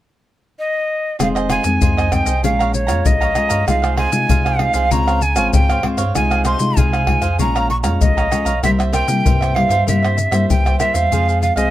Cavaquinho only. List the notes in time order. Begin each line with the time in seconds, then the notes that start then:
1.19 F4 G#4 C5 D#5
1.35 G#4 C5 D#5
1.49 F4 G#4 C5 D#5
1.64 muted cavaquinho stroke
1.81 F4 G#4 C5 D#5
1.97 G#4 C5 D#5
2.26 G#4 C5 D#5
2.43 G#4 C#5 F5 A#5
2.59 C#5 F5 A#5
2.73 muted cavaquinho stroke
2.87 C#5 F5 A#5
3.21 C#5 F5 A#5
3.34 G#4 C#5 F5 A#5
3.49 C#5 F5 A#5
3.66 D#4 G#4 C5 F5
3.82 G#4 C5 F5
3.96 D#4 G#4 C5 F5
4.11 muted cavaquinho stroke
4.28 D#4 G#4 C5 F5
4.45 G#4 C5 F5
4.74 G#4 C5 F5
4.91 F4 C5 C#5 F5
5.07 C5 C#5 F5
5.22 muted cavaquinho stroke
5.36 C5 C#5 F5
5.69 C5 C#5 F5
5.83 F4 C5 C#5 F5
5.98 C5 C#5 F5
6.15 D#4 G#4 C5 F5
6.31 G#4 C5 F5
6.44 D#4 G#4 C5 F5
6.60 muted cavaquinho stroke
6.77 D#4 G#4 C5 F5
6.93 G#4 C5 F5
7.22 G#4 C5 F5
7.39 G#4 C#5 F5 A#5
7.55 C#5 F5 A#5
7.70 muted cavaquinho stroke
7.83 C#5 F5 A#5
8.17 C#5 F5 A#5
8.30 G#4 C#5 F5 A#5
8.45 C#5 F5 A#5
8.63 A#4 C5 E5
8.79 C5 E5
8.92 A#4 C5 E5
9.08 muted cavaquinho stroke
9.25 A#4 C5 E5
9.41 C5 E5
9.69 C5 E5
9.87 A#4 C5 E5
10.03 C5 E5
10.17 muted cavaquinho stroke
10.31 C5 E5
10.65 C5 E5
10.79 A#4 C5 E5
10.94 C5 E5
11.11 F4 G#4 C5 F5
11.28 G#4 C5 F5
11.42 muted cavaquinho stroke
11.56 G#4 C5 F5